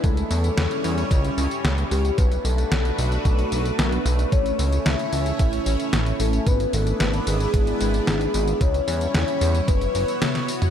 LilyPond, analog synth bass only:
\new Staff \with { instrumentName = "Analog synth bass" } { \clef bass \time 4/4 \key b \minor \tempo 4 = 112 cis,8 e,8 e,8 e,8 cis,8 cis,8 cis,8 cis,8 | b,,8 b,,8 b,,8 b,,8 b,,8 b,,8 b,,8 b,,8 | a,,8 cis,8 cis,8 cis,8 a,,8 a,,8 a,,8 a,,8 | gis,,8 gis,,8 gis,,8 gis,,8 gis,,8 gis,,8 gis,,8 gis,,8 |
cis,8 e,8 e,8 e,8 fis,,8 fis,,8 r4 | }